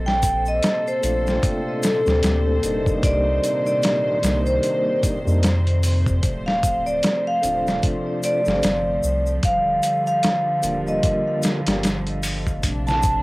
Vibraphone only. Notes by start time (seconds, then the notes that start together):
0.06 G5
0.48 D#5
0.88 C5
1.83 A4
3.04 D5
3.67 D5
4.47 C5
6.46 F5
6.86 D5
7.27 F5
8.25 D5
9.45 F5
10.07 F5
10.88 D#5
12.87 A5